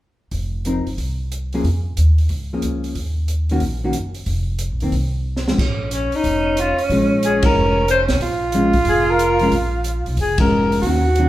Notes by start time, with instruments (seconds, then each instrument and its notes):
0.31 upright bass F1, kick, open hi-hat
0.65 hollow-body jazz guitar F3 C4 D#4 A#4, closed hi-hat
0.86 upright bass F#1, open hi-hat
0.98 upright bass C2, kick, open hi-hat
1.32 closed hi-hat
1.53 hollow-body jazz guitar F3 A#3 C#4 G#4, open hi-hat
1.64 upright bass F2, kick, open hi-hat
1.97 upright bass D#2, closed hi-hat
2.18 open hi-hat
2.29 upright bass C#2, kick, open hi-hat
2.53 hollow-body jazz guitar F3 A#3 C#4 G#4
2.62 upright bass C#2, closed hi-hat
2.84 open hi-hat
2.95 upright bass D#2, kick, open hi-hat
3.28 closed hi-hat
3.49 hollow-body jazz guitar D#3 A#3 C#4 F#4, open hi-hat
3.60 upright bass A#1, kick, open hi-hat
3.84 hollow-body jazz guitar D#3 A#3 C#4 F#4
3.93 upright bass F#1, closed hi-hat
4.14 open hi-hat
4.26 upright bass F1, kick, open hi-hat
4.59 closed hi-hat
4.71 upright bass A#1
4.80 upright bass E1, hollow-body jazz guitar D#3 A#3 C4, open hi-hat
4.92 upright bass C2, kick, open hi-hat
5.36 snare
5.48 hollow-body jazz guitar F3 G#3 C#4, snare
5.58 upright bass A#1, tenor saxophone C#4, kick, crash
5.91 alto saxophone C#4, closed hi-hat
6.12 alto saxophone D#4, open hi-hat
6.24 upright bass F1, kick, open hi-hat
6.57 alto saxophone F4, closed hi-hat
6.78 muted upright bass stroke, open hi-hat
6.90 upright bass A#1, hollow-body jazz guitar F3 G#3 C#4, kick, open hi-hat
7.23 alto saxophone G#4, closed hi-hat
7.43 alto saxophone A#4, kick, ride
7.56 upright bass F1
7.88 alto saxophone C5, closed hi-hat
8.08 upright bass B1, snare, open hi-hat
8.21 upright bass A#1, tenor saxophone F4, kick, open hi-hat
8.52 hollow-body jazz guitar F3 G#3 C#4, closed hi-hat
8.73 kick, open hi-hat
8.85 upright bass F1, kick, open hi-hat
8.89 alto saxophone G#4
9.10 alto saxophone A#4
9.19 closed hi-hat
9.39 hollow-body jazz guitar F3 G#3 C#4, open hi-hat
9.51 upright bass A#1, kick, open hi-hat
9.84 closed hi-hat
10.06 upright bass B1, open hi-hat
10.17 upright bass F1, kick, open hi-hat
10.21 alto saxophone G#4
10.38 hollow-body jazz guitar F3 G#3 C#4, alto saxophone A#4, kick, ride
10.72 open hi-hat
10.82 upright bass D#2, hollow-body jazz guitar D#3, tenor saxophone F#4, kick, open hi-hat
10.86 hollow-body jazz guitar A#3 C#4 F#4
11.16 hollow-body jazz guitar D#3 A#3, closed hi-hat
11.20 hollow-body jazz guitar C#4 F#4